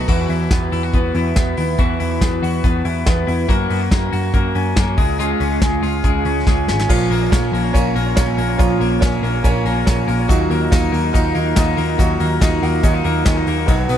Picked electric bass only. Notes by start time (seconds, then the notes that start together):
0.08 E2
0.29 E2
0.51 E2
0.72 E2
0.93 E2
1.15 E2
1.36 E2
1.58 D#2
1.79 E2
2.01 E2
2.22 E2
2.42 E2
2.64 E2
2.85 E2
3.07 E2
3.28 E2
3.49 F#2
3.70 F#2
3.91 F#2
4.13 F#2
4.34 F#2
4.55 F#2
4.77 F#2
4.98 C#2
5.40 C#2
5.62 C#2
5.82 C#2
6.04 C#2
6.25 C#2
6.47 C#2
6.68 G#1
6.89 A#1
7.10 A#1
7.32 A#1
7.52 A#1
7.74 A#1
7.95 A#1
8.17 A#1
8.37 A#1
8.59 A#1
8.80 A#1
9.02 A#1
9.23 A#1
9.44 A#1
9.65 A#1
9.87 A#1
10.08 A#1
10.29 D#2
10.50 D#2
10.72 D#2
10.93 D#2
11.14 D#2
11.36 D#2
11.57 D#2
11.78 D#2
11.99 D#2
12.20 D#2
12.41 D#2
12.62 D#2
12.83 D#2
13.05 D#2
13.26 D#2
13.47 D#2
13.68 B1
13.89 B1